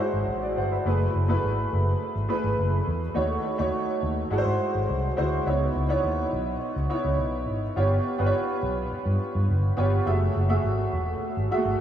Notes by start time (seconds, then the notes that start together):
Already playing: G#3
0.00 E4 F#4 C5
0.13 G#1
0.27 A1
0.42 G#4 D5
0.57 G1 C5 F#5
0.71 B4 E5
0.85 F#1 A3 E4 G#4 B4
1.14 F#1
1.28 A3 E4 G#4 B4
1.44 G#1
1.73 F#1
2.15 G#1
2.28 A3 E4 G#4 B4
2.44 G#1
2.58 F#1
2.87 E2
3.14 D#2 A3 D#4 F#4 C#5
3.58 D#2 A3 D#4 F#4 C#5
4.03 D#2
4.31 G#1 G#3 E4 F#4 A4
4.38 C5
4.46 G#2
4.75 G#1
4.89 C2
5.17 D2 G#3 E4 F#4 C5
5.46 C#2 B3 D#4 E4 C#5
5.76 C#2
5.89 B3 D#4 E4 C#5
6.04 D#2
6.33 B1
6.76 C#2
6.89 B3 D#4 E4 C#5
7.04 C#2
7.19 B1
7.48 G#1
7.76 G1 B3 F4 G4 C#5
8.18 G1 B3 F4 G4 B4
8.26 C#5
8.63 B1
8.92 muted fingered electric bass stroke
9.05 G2
9.35 G2
9.49 G1
9.77 G1 B3 F4 G4 C#5
10.06 F#1 A3 F#4 G#4 E5
10.36 F#1
10.49 A3 F#4 G#4 E5
10.64 G#1
10.93 E1
11.37 G#1
11.51 G#3 F#4 G#4 E5
11.57 A3
11.65 G#1